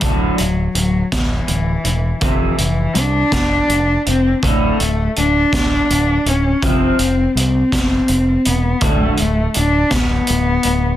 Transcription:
0.01 0.29 D1 medium
0.01 0.37 D2 medium
0.01 0.37 A2 medium
0.01 0.37 D3 medium
0.01 kick medium
0.01 closed hi-hat medium
0.06 0.74 F#3 medium
0.38 0.67 D1 medium
0.38 0.72 D2 medium
0.38 0.72 A2 medium
0.38 closed hi-hat medium
0.75 1.02 D1 medium
0.75 1.09 D2 medium
0.75 1.09 A2 medium
0.75 1.11 F#3 medium
0.75 closed hi-hat medium
1.12 1.39 D1 medium
1.12 1.45 D2 medium
1.12 1.45 A2 medium
1.12 2.20 E3 medium
1.12 kick medium
1.12 snare medium
1.12 closed hi-hat medium
1.47 1.75 D1 medium
1.47 1.81 D2 medium
1.47 1.81 A2 medium
1.47 closed hi-hat soft
1.84 2.12 E1 medium
1.84 2.18 D2 medium
1.84 2.18 A2 medium
1.84 closed hi-hat soft
2.21 2.49 F1 medium
2.21 2.56 F2 medium
2.21 2.57 C3 medium
2.21 3.00 E3 medium
2.21 kick medium
2.21 closed hi-hat medium
2.58 2.86 F1 medium
2.58 2.92 F2 medium
2.58 2.92 C3 medium
2.58 closed hi-hat soft
2.94 3.22 C2 medium
2.94 3.28 F2 medium
2.94 3.28 C3 medium
2.94 closed hi-hat medium
2.98 4.07 D4 loud
3.32 3.59 F1 medium
3.32 3.65 F2 soft
3.32 3.65 C3 medium
3.32 kick medium
3.32 snare medium
3.32 closed hi-hat medium
3.67 3.96 F1 medium
3.67 4.01 F2 medium
3.67 4.01 C3 medium
3.67 closed hi-hat medium
4.06 4.33 F1 medium
4.06 4.39 F2 medium
4.06 4.39 C3 medium
4.06 4.42 C4 medium
4.06 closed hi-hat soft
4.43 4.70 D1 medium
4.43 4.77 D2 medium
4.43 4.77 A2 medium
4.43 4.78 D3 medium
4.43 5.14 A3 medium
4.43 kick medium
4.43 closed hi-hat medium
4.80 5.07 D1 medium
4.80 5.13 A2 medium
4.80 closed hi-hat soft
5.16 5.44 D1 medium
5.16 5.49 D2 medium
5.16 5.50 A2 medium
5.16 6.30 D4 loud
5.16 closed hi-hat soft
5.52 5.79 D1 medium
5.52 5.86 D2 medium
5.52 5.87 A2 medium
5.52 kick medium
5.52 snare loud
5.52 closed hi-hat medium
5.90 6.17 D1 medium
5.90 6.23 D2 soft
5.90 6.23 A2 medium
5.90 closed hi-hat medium
6.26 6.52 D1 medium
6.26 6.59 D2 medium
6.26 6.59 A2 medium
6.26 6.67 C#4 medium
6.26 closed hi-hat soft
6.62 6.89 F1 medium
6.62 6.97 F2 medium
6.62 6.98 C3 medium
6.62 6.98 F3 medium
6.62 7.37 C4 medium
6.62 kick medium
6.62 closed hi-hat medium
6.99 7.26 F1 medium
6.99 7.32 F2 medium
6.99 7.32 C3 medium
6.99 closed hi-hat medium
7.35 7.62 C2 medium
7.35 7.69 F2 medium
7.35 7.69 C3 medium
7.35 8.49 C4 loud
7.35 closed hi-hat medium
7.72 7.99 F1 medium
7.72 8.06 F2 medium
7.72 8.06 C3 medium
7.72 kick medium
7.72 snare medium
7.72 closed hi-hat medium
8.08 8.36 F1 medium
8.08 8.42 F2 medium
8.08 8.42 C3 medium
8.08 closed hi-hat medium
8.45 8.73 E1 medium
8.45 8.79 F2 medium
8.45 8.79 C3 medium
8.45 8.86 B3 medium
8.45 closed hi-hat medium
8.81 9.09 D1 medium
8.81 9.16 D2 medium
8.81 9.17 A2 medium
8.81 9.17 D3 medium
8.81 9.20 A3 medium
8.81 kick loud
8.81 closed hi-hat medium
9.17 9.46 D1 medium
9.17 9.52 D2 medium
9.17 9.52 A2 medium
9.17 9.54 A3 medium
9.17 closed hi-hat soft
9.54 9.83 D1 medium
9.54 9.88 D2 medium
9.54 9.89 A2 medium
9.54 closed hi-hat medium
9.58 9.96 D4 medium
9.91 10.18 D1 medium
9.91 10.25 D2 medium
9.91 10.25 A2 medium
9.91 10.97 B3 medium
9.91 kick medium
9.91 snare medium
9.91 closed hi-hat medium
10.27 10.56 D1 medium
10.27 10.62 D2 medium
10.27 10.62 A2 medium
10.27 closed hi-hat medium
10.63 10.92 D1 medium
10.63 10.97 D2 medium
10.63 10.97 A2 medium
10.63 closed hi-hat medium

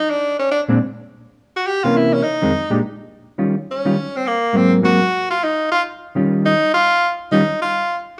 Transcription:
0.00 0.12 D#4 medium
0.10 0.39 D4 medium
0.39 0.49 C#4 medium
0.51 0.62 D4 medium
0.68 0.78 A#2 medium
0.68 0.78 G#3 medium
0.68 0.78 C4 medium
0.68 0.78 D4 medium
1.56 1.69 F#4 medium
1.67 1.85 G4 medium
1.84 2.21 C3 medium
1.84 2.21 E3 medium
1.84 2.22 A#3 medium
1.84 2.22 C#4 medium
1.84 1.98 F4 medium
1.96 2.15 E4 medium
2.14 2.25 C#4 medium
2.23 2.81 D#4 medium
2.42 2.51 F2 medium
2.42 2.51 D#3 medium
2.42 2.52 G#3 medium
2.42 2.51 C4 medium
2.70 2.80 A#2 medium
2.70 2.80 G#3 medium
2.70 2.80 D4 medium
2.70 2.80 G4 medium
3.38 3.54 D#3 soft
3.38 3.54 G3 medium
3.38 3.55 C#4 medium
3.38 3.55 F4 medium
3.71 4.18 C#4 medium
3.85 3.95 D#3 medium
3.85 3.95 G3 medium
3.85 3.95 C#4 medium
3.85 3.95 F4 medium
4.17 4.28 C4 medium
4.27 4.58 A#3 medium
4.53 4.81 G#2 medium
4.53 4.81 F#3 medium
4.53 4.81 A#3 medium
4.53 4.82 C4 medium
4.53 4.73 C4 medium
4.83 4.99 G#2 medium
4.83 4.99 F#3 medium
4.83 4.99 A#3 medium
4.83 4.99 C4 medium
4.83 5.27 F#4 medium
5.30 5.45 F4 medium
5.44 5.71 D#4 medium
5.71 5.81 F4 medium
6.15 6.53 D#3 medium
6.15 6.53 G3 medium
6.15 6.53 C#4 medium
6.15 6.54 F4 medium
6.45 6.72 D#4 loud
6.74 7.10 F4 loud
7.32 7.41 D#3 medium
7.32 7.41 G3 medium
7.32 7.41 C#4 medium
7.32 7.58 D#4 medium
7.32 7.41 F4 medium
7.62 7.97 F4 medium

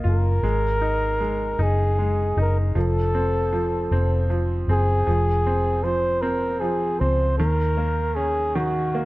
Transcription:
0.00 0.46 A#3 medium
0.00 0.04 F4 soft
0.00 0.42 F4 soft
0.05 0.41 F#1 medium
0.05 1.64 A#4 loud
0.43 1.55 G#1 medium
0.43 1.19 G#3 medium
0.82 1.57 D#4 soft
1.20 1.97 G#3 soft
1.59 2.32 F#1 medium
1.59 2.36 D#4 soft
1.63 2.38 G#4 medium
1.99 2.73 G#3 soft
2.37 2.73 F#1 medium
2.37 2.75 D#4 soft
2.41 2.57 A#4 medium
2.75 3.87 F1 medium
2.75 3.51 F3 medium
2.75 4.27 A4 medium
3.15 3.91 C4 soft
3.53 4.29 F3 soft
3.91 4.65 F1 medium
3.91 4.68 C4 soft
4.30 5.05 F3 soft
4.68 5.05 F#1 medium
4.68 5.06 C4 soft
4.68 5.85 G#4 medium
5.07 6.96 F1 medium
5.07 5.82 F3 medium
5.46 6.21 C4 soft
5.84 6.60 F3 soft
5.84 6.23 C5 medium
6.22 7.00 C4 soft
6.22 6.62 A#4 medium
6.60 7.36 F3 soft
6.60 7.01 G#4 medium
7.00 7.37 C#2 medium
7.00 7.38 C4 soft
7.00 7.37 C5 medium
7.38 9.05 D#2 medium
7.38 8.54 D#3 medium
7.38 8.17 A#4 medium
7.77 8.93 A#3 soft
8.15 9.05 C#4 soft
8.15 8.57 G#4 medium
8.55 9.05 D#3 medium
8.55 9.05 F#4 medium
8.95 9.05 A#3 soft

